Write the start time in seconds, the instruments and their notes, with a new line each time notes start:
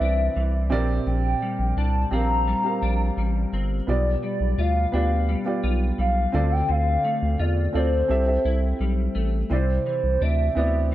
Already playing: clean electric guitar C3 E3 B3, upright piano C4 E4 B4 D5 E5, soft synth lead E5
0.01 analog synth bass C2, clean electric guitar D4
0.36 analog synth bass C2, clean electric guitar E3
0.70 analog synth bass A#1, clean electric guitar A#2, upright piano C4 G4 A#4 D5
1.06 analog synth bass A#1, clean electric guitar A#2, soft synth lead G5
1.42 clean electric guitar G3
1.59 analog synth bass A#1
1.77 analog synth bass C2, clean electric guitar D4, soft synth lead A5
2.11 analog synth bass A#1, upright piano C4 G4 A#4 F5, clean electric guitar C4, soft synth lead A#5
2.48 clean electric guitar G3
2.63 upright piano C4 G4 A#4 F5
2.82 analog synth bass A#1, clean electric guitar D4
3.17 analog synth bass A1, clean electric guitar G3
3.53 analog synth bass G1, clean electric guitar C4
3.87 analog synth bass B1, clean electric guitar B2, upright piano B3 F4 G4 D5, soft synth lead D5
4.23 clean electric guitar G3, soft synth lead D5
4.40 analog synth bass B1
4.58 analog synth bass D2, clean electric guitar F4, soft synth lead F5
4.92 analog synth bass D2, upright piano B3 F4 G4 D5, clean electric guitar D4, soft synth lead F5
5.29 clean electric guitar G3
5.45 upright piano B3 F4 G4 D5
5.64 analog synth bass B1, clean electric guitar F4
5.99 analog synth bass B1, clean electric guitar G3, soft synth lead F5
6.32 analog synth bass D2, clean electric guitar D3, upright piano C4 F4 A4 D5
6.52 soft synth lead G5
6.69 analog synth bass D2, clean electric guitar D3, soft synth lead F5
7.04 clean electric guitar A3
7.22 analog synth bass D2
7.39 analog synth bass E2, clean electric guitar F4, soft synth lead D5
7.73 analog synth bass D2, upright piano C4 F4 A4 D5, clean electric guitar C4, soft synth lead C5
8.08 analog synth bass C2, upright piano C4 G4 A4 E5
8.26 upright piano C4 G4 A4 E5
8.45 analog synth bass C2, clean electric guitar E4
8.80 analog synth bass B1, clean electric guitar G3
9.15 analog synth bass A1, clean electric guitar A3
9.50 analog synth bass C2, clean electric guitar C3, upright piano C4 E4 C5 D5, soft synth lead C5
9.86 clean electric guitar E3, soft synth lead C5
10.03 analog synth bass C2
10.21 analog synth bass D2, clean electric guitar D4, soft synth lead E5
10.55 analog synth bass D2, clean electric guitar B3, upright piano C4 E4 B4 D5, soft synth lead E5